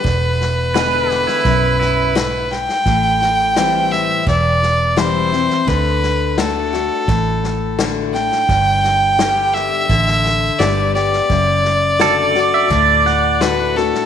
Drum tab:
HH |----p-------p---|----p-------p---|----p-------p---|----p-------p---|
SD |o-o-o-ooo-o-o-oo|o-o-o-o-o-o-o-oo|o-o-o-o-o-o-o-oo|o-o-o-o-ooo-o-oo|
BD |o-------o-------|o-------o-------|o-------o-------|o-------o-------|

HH |----p-------p---|
SD |o-o-o-o-o-o-o-oo|
BD |o-------o-------|